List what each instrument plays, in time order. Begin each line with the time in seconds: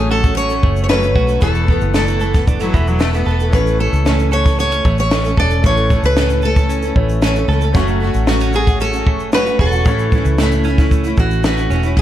Already playing: fingered electric bass A1, nylon-string guitar C#3 C#4 A4, clean electric guitar A3, grand piano A3 C#4 F#4 C#5
0.09 nylon-string guitar F#3 A3 C#4 A4, clean electric guitar F#4, steel-string acoustic guitar A4
0.22 nylon-string guitar F#3 A3 C#4 A4, kick, shaker
0.37 clean electric guitar C#4, steel-string acoustic guitar C#5, shaker
0.49 nylon-string guitar F#3 A3 C#4 A4, shaker
0.63 fingered electric bass F#1, clean electric guitar A3, kick
0.76 shaker
0.84 steel-string acoustic guitar C#5
0.89 nylon-string guitar F#2 C#3 F#3 A3 C#4 A4, grand piano A3 C#4 F#4 C#5, steel-string acoustic guitar B4, snare, shaker
1.02 nylon-string guitar F#3 A3 C#4 A4, shaker
1.14 fingered electric bass B1, nylon-string guitar F#3 A3 C#4 A4, clean electric guitar F#4, kick
1.27 nylon-string guitar F#3 A3 C#4 A4, shaker
1.40 fingered electric bass E1, nylon-string guitar E2 B2 E3 A3 B3 A4, grand piano A3 B3 E4, steel-string acoustic guitar A4, kick, shaker
1.44 grand piano B4
1.55 shaker
1.67 nylon-string guitar E3 A3 B3 A4, kick
1.81 fingered electric bass F#1, shaker
1.93 nylon-string guitar E2 B2 E3 A3 B3 A4, clean electric guitar D4, steel-string acoustic guitar A4, snare, shaker
2.08 clean electric guitar E4, shaker
2.19 nylon-string guitar E3 A3 B3 A4, shaker
2.33 nylon-string guitar E3 A3 B3 A4, kick, snare, shaker
2.48 clean electric guitar D4, kick, shaker
2.59 nylon-string guitar E3 A3 B3 A4, cello F#3, clean electric guitar E4, shaker
2.74 fingered electric bass E1, cello E3, clean electric guitar B3, kick, shaker
2.87 cello F#3, shaker
2.99 nylon-string guitar E2 B2 E3 A3 B3 A4, cello A3, clean electric guitar E4, snare, shaker
3.13 nylon-string guitar E3 A3 B3 A4, cello B3, shaker
3.25 fingered electric bass E1, nylon-string guitar E3 A3 B3 A4
3.39 nylon-string guitar E3 A3 B3 A4, shaker
3.51 fingered electric bass A1, nylon-string guitar A2 E3 A3 C#4 A4, grand piano A3 C#4 E4, steel-string acoustic guitar B4, kick, shaker
3.55 grand piano C#5
3.67 shaker
3.78 nylon-string guitar E3 A3 C#4 A4, steel-string acoustic guitar A4
3.93 fingered electric bass C#2, shaker
4.05 nylon-string guitar A2 E3 A3 C#4 A4, snare, shaker
4.19 shaker
4.31 nylon-string guitar E3 A3 C#4 A4, steel-string acoustic guitar C#5, shaker
4.44 nylon-string guitar A3 C#4 A4, kick, snare, shaker
4.59 clean electric guitar B3, steel-string acoustic guitar C#5, shaker
4.70 nylon-string guitar A3 C#4 A4, shaker
4.85 fingered electric bass A1, clean electric guitar A3, kick, shaker
4.98 steel-string acoustic guitar C#5, shaker
5.10 nylon-string guitar A2 E3 A3 C#4 A4, snare, shaker
5.24 nylon-string guitar A3 C#4 A4, shaker
5.37 fingered electric bass E1, nylon-string guitar E3 A3 C#4 A4, steel-string acoustic guitar D5, kick
5.50 nylon-string guitar A3 C#4 A4, shaker
5.62 fingered electric bass A1, nylon-string guitar A2 E3 A3 C#4 A4, grand piano A3 C#4 E4, kick, shaker
5.66 steel-string acoustic guitar C#5, grand piano C#5
5.77 shaker
5.89 nylon-string guitar E3 A3 C#4 A4, kick, shaker
6.03 fingered electric bass C#2, steel-string acoustic guitar B4, shaker
6.17 nylon-string guitar A2 E3 A3 C#4 A4, snare, shaker
6.30 shaker
6.42 nylon-string guitar E3 A3 C#4 A4, steel-string acoustic guitar A4, shaker
6.56 nylon-string guitar A3 C#4 A4, kick, shaker
6.70 clean electric guitar C#4, shaker
6.82 nylon-string guitar A3 C#4 A4, shaker
6.95 fingered electric bass A1, grand piano A3 C#4 E4 C#5, clean electric guitar A3, kick
7.09 shaker
7.22 nylon-string guitar A2 E3 A3 C#4 A4, snare, shaker
7.35 nylon-string guitar A3 C#4 A4, shaker
7.48 fingered electric bass C#2, nylon-string guitar E3 A3 C#4 A4
7.61 nylon-string guitar A3 C#4 A4, shaker
7.73 fingered electric bass F#1, nylon-string guitar F#2 C#3 F#3 A3 C#4, grand piano A3 C#4 F#4, kick, shaker
7.77 nylon-string guitar F#4, grand piano C#5
7.88 shaker
8.00 nylon-string guitar F#3 A3 C#4 F#4
8.14 fingered electric bass A1, shaker
8.27 nylon-string guitar F#2 C#3 F#3 A3 C#4 F#4, clean electric guitar B3, steel-string acoustic guitar F#4, snare, shaker
8.40 clean electric guitar C#4, shaker
8.53 nylon-string guitar F#3 A3 C#4 F#4, steel-string acoustic guitar G#4, shaker
8.66 nylon-string guitar F#3 A3 C#4 F#4, kick, shaker
8.80 clean electric guitar C#4, steel-string acoustic guitar A4, shaker
8.93 nylon-string guitar F#3 A3 C#4 F#4, shaker
9.06 fingered electric bass F#1, clean electric guitar A3, kick
9.20 shaker
9.32 nylon-string guitar F#2 C#3 F#3 A3 C#4 F#4, steel-string acoustic guitar B4, snare, shaker
9.46 nylon-string guitar F#3 A3 C#4 F#4, shaker
9.59 fingered electric bass E1, nylon-string guitar F#3 A3 C#4 F#4, steel-string acoustic guitar A4, kick
9.72 nylon-string guitar F#3 A3 C#4 F#4, shaker
9.84 fingered electric bass A1, nylon-string guitar A2 E3 A3 C#4, grand piano A3 C#4 E4 C#5, kick, shaker
9.88 nylon-string guitar E4
9.99 shaker
10.12 nylon-string guitar E3 A3 C#4 E4, kick, shaker
10.25 fingered electric bass C#2, shaker
10.38 nylon-string guitar A2 E3 A3 C#4 E4, snare, shaker
10.52 shaker
10.64 nylon-string guitar E3 A3 C#4 E4, shaker
10.78 nylon-string guitar A3 C#4 E4, kick, snare, shaker
10.91 clean electric guitar A3, kick, shaker
11.04 nylon-string guitar A3 C#4 E4, shaker
11.17 fingered electric bass A1, clean electric guitar E3, steel-string acoustic guitar F#4, kick, shaker
11.31 shaker
11.44 nylon-string guitar A2 E3 A3 C#4 E4, steel-string acoustic guitar F#4, snare, shaker
11.57 nylon-string guitar A3 C#4 E4, shaker
11.70 fingered electric bass E1, nylon-string guitar E3 A3 C#4 E4, shaker
11.83 nylon-string guitar A3 C#4 E4, shaker
11.97 fingered electric bass A1, steel-string acoustic guitar A4, kick, crash